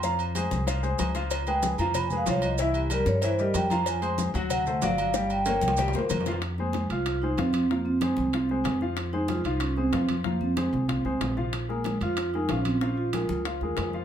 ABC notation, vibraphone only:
X:1
M:4/4
L:1/8
Q:1/4=188
K:Fm
V:1 name="Vibraphone"
b z6 z | z g a b (3_c' a f d e | =e G B d c _e g b | a c' z2 ^f2 =f2- |
f g2 g z4 | z B, A, F2 E C C | B, C6 z | z E F E D C2 z |
B, C6 z | z B, A, F2 E D C | D F6 z |]